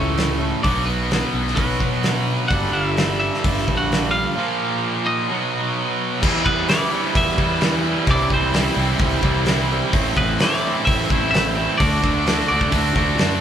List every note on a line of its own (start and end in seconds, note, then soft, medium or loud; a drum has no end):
0.00 0.51 C#2 medium
0.00 0.62 A2 medium
0.00 0.63 E3 medium
0.00 0.64 E3 medium
0.00 0.40 A3 medium
0.00 0.64 A3 medium
0.00 0.61 C#4 medium
0.00 0.65 C#4 medium
0.00 0.61 C#5 medium
0.18 0.65 E4 medium
0.18 snare loud
0.18 open hi-hat medium
0.41 0.65 A3 medium
0.63 1.21 B1 loud
0.63 1.56 B2 medium
0.63 0.87 B2 medium
0.63 1.56 F#3 medium
0.63 1.57 B3 loud
0.63 0.86 D4 medium
0.63 0.86 D5 medium
0.63 kick loud
0.63 open hi-hat medium
0.86 1.57 B2 medium
0.86 1.53 B3 medium
0.86 1.54 B4 medium
1.11 1.79 F#3 medium
1.11 snare loud
1.11 open hi-hat medium
1.34 1.53 B1 medium
1.34 2.51 B3 medium
1.48 snare soft
1.56 1.77 B1 loud
1.56 2.49 B2 medium
1.56 2.51 B2 medium
1.56 2.49 F#3 medium
1.56 2.23 B3 medium
1.56 2.50 B3 medium
1.56 2.22 B4 medium
1.56 kick loud
1.56 open hi-hat medium
1.80 2.37 B2 medium
1.80 2.26 F#3 medium
1.80 kick medium
2.03 2.51 D4 medium
2.03 snare medium
2.03 open hi-hat soft
2.27 2.51 F#3 medium
2.48 2.69 G1 loud
2.48 3.42 G2 medium
2.48 3.43 D3 medium
2.48 2.72 F#4 medium
2.48 2.73 F#5 loud
2.48 kick loud
2.48 open hi-hat medium
2.53 3.43 G3 medium
2.72 3.29 G1 medium
2.72 3.17 E4 medium
2.72 3.18 E5 loud
2.97 snare loud
2.97 open hi-hat medium
3.19 3.74 E4 medium
3.19 3.80 E5 medium
3.34 snare soft
3.43 3.63 G1 medium
3.43 4.35 G2 medium
3.43 4.35 D3 medium
3.43 4.36 G3 medium
3.43 kick loud
3.43 open hi-hat medium
3.58 snare soft
3.68 4.24 A#1 medium
3.68 kick medium
3.77 4.10 F#4 medium
3.77 4.11 F#5 medium
3.92 snare loud
3.92 open hi-hat medium
4.11 5.01 F4 medium
4.11 5.01 F5 medium
4.35 5.27 A#2 medium
4.35 5.28 F3 medium
4.35 5.29 A#3 medium
5.06 5.95 D#4 medium
5.06 5.95 D#5 medium
5.29 6.20 B2 loud
5.29 6.21 F#3 loud
5.29 6.22 B3 loud
6.22 6.41 E2 loud
6.22 6.69 E3 medium
6.22 6.69 G3 medium
6.22 6.69 B3 loud
6.22 6.71 E4 loud
6.22 kick loud
6.22 crash loud
6.45 6.64 E2 medium
6.45 6.67 G3 medium
6.45 6.67 B3 medium
6.45 6.68 B3 medium
6.45 6.69 E4 medium
6.45 6.69 B4 medium
6.45 kick medium
6.69 7.15 E3 medium
6.69 6.95 G3 loud
6.69 6.93 B3 loud
6.69 7.13 D4 medium
6.69 6.93 E4 loud
6.69 7.17 D5 loud
6.69 snare loud
6.69 open hi-hat medium
6.93 7.15 G3 medium
6.93 7.15 B3 medium
6.93 7.17 E4 medium
7.15 7.34 E2 medium
7.15 8.08 E3 medium
7.15 7.40 G3 medium
7.15 7.39 B3 medium
7.15 8.05 E4 medium
7.15 7.38 E4 medium
7.15 8.10 E5 medium
7.15 kick loud
7.15 open hi-hat medium
7.38 7.94 E2 medium
7.38 7.84 G3 medium
7.38 7.83 B3 medium
7.38 7.84 E4 medium
7.38 kick medium
7.60 8.08 E3 medium
7.60 8.06 G3 medium
7.60 8.07 B3 loud
7.60 8.10 E4 loud
7.60 snare loud
7.60 open hi-hat medium
7.84 8.07 G3 medium
7.84 8.06 B3 medium
7.84 8.09 E4 medium
8.07 8.26 C2 loud
8.07 8.52 C3 medium
8.07 8.53 E3 medium
8.07 8.53 G3 loud
8.07 8.54 C4 loud
8.07 8.55 E4 loud
8.07 8.33 D5 loud
8.07 kick loud
8.07 open hi-hat medium
8.11 8.31 D4 medium
8.30 8.68 C2 medium
8.30 8.53 G3 medium
8.30 8.55 C4 medium
8.30 9.21 C4 medium
8.30 8.56 E4 medium
8.30 9.21 C5 medium
8.30 kick medium
8.53 9.00 C3 medium
8.53 8.99 E3 medium
8.53 8.78 G3 loud
8.53 8.77 C4 loud
8.53 8.75 E4 loud
8.53 snare loud
8.53 open hi-hat medium
8.76 8.96 C2 loud
8.76 8.98 G3 medium
8.76 8.99 C4 medium
8.76 8.99 E4 medium
8.99 9.18 C2 medium
8.99 9.46 E3 medium
8.99 9.21 G3 medium
8.99 9.21 C4 medium
8.99 9.20 E4 medium
8.99 kick loud
8.99 open hi-hat medium
9.21 9.79 C2 loud
9.21 9.70 G3 medium
9.21 9.69 C4 medium
9.21 9.68 E4 medium
9.21 kick loud
9.46 9.92 C3 medium
9.46 9.92 E3 medium
9.46 9.93 G3 loud
9.46 9.93 C4 loud
9.46 9.93 E4 loud
9.46 snare loud
9.46 open hi-hat medium
9.69 9.92 G3 medium
9.69 9.92 C4 medium
9.69 9.92 E4 medium
9.93 10.12 A1 loud
9.93 10.39 A2 medium
9.93 10.40 E3 medium
9.93 10.41 A3 loud
9.93 10.40 C4 loud
9.93 10.41 E4 loud
9.93 kick loud
9.93 open hi-hat medium
10.17 10.36 A1 medium
10.17 10.40 A3 medium
10.17 10.39 B3 medium
10.17 10.41 C4 medium
10.17 10.41 E4 medium
10.17 10.41 B4 medium
10.17 kick medium
10.39 10.86 A2 medium
10.39 10.85 E3 loud
10.39 10.65 A3 loud
10.39 10.63 C4 loud
10.39 10.85 D4 medium
10.39 10.62 E4 medium
10.39 10.85 D5 loud
10.39 snare loud
10.39 open hi-hat medium
10.53 snare soft
10.63 10.85 A3 medium
10.63 10.86 C4 medium
10.63 10.86 E4 medium
10.85 11.05 A1 loud
10.85 11.33 E3 medium
10.85 11.10 A3 medium
10.85 11.10 C4 medium
10.85 11.30 E4 medium
10.85 11.09 E4 medium
10.85 11.29 E5 loud
10.85 kick loud
10.85 open hi-hat medium
11.10 11.66 A1 medium
11.10 11.56 A3 medium
11.10 11.56 C4 medium
11.10 11.54 E4 medium
11.10 kick medium
11.31 11.79 A2 medium
11.31 11.79 E3 loud
11.31 11.76 E4 medium
11.31 11.77 E5 loud
11.31 open hi-hat medium
11.35 11.79 A3 loud
11.35 11.80 C4 medium
11.35 11.80 E4 loud
11.35 snare loud
11.55 11.79 A3 medium
11.55 11.78 C4 medium
11.55 11.77 E4 medium
11.78 11.99 D2 loud
11.78 12.24 D3 loud
11.78 12.25 A3 medium
11.78 12.25 D4 medium
11.78 12.26 F#4 loud
11.78 12.47 D5 loud
11.78 kick loud
11.78 open hi-hat medium
11.82 12.46 D4 medium
12.02 12.40 D2 medium
12.02 12.27 A3 medium
12.02 12.28 D4 medium
12.02 12.29 F#4 medium
12.02 kick medium
12.25 12.69 D3 medium
12.25 12.49 A3 medium
12.25 12.48 D4 medium
12.25 12.47 F#4 loud
12.25 snare loud
12.25 open hi-hat medium
12.39 snare soft
12.48 12.69 D2 loud
12.48 12.71 A3 medium
12.48 12.71 D4 medium
12.48 13.39 D4 medium
12.48 12.71 F#4 medium
12.48 13.38 D5 medium
12.61 kick medium
12.71 12.91 D2 loud
12.71 13.18 D3 medium
12.71 12.96 A3 medium
12.71 12.95 D4 medium
12.71 12.95 F#4 medium
12.71 kick loud
12.71 open hi-hat medium
12.95 13.14 D2 loud
12.95 13.41 A3 medium
12.95 13.41 D4 medium
12.95 13.41 F#4 medium
12.95 kick medium
13.18 13.39 F#2 medium
13.18 13.41 D3 medium
13.18 13.41 A3 medium
13.18 13.41 D4 medium
13.18 13.41 F#4 loud
13.18 snare loud
13.18 open hi-hat medium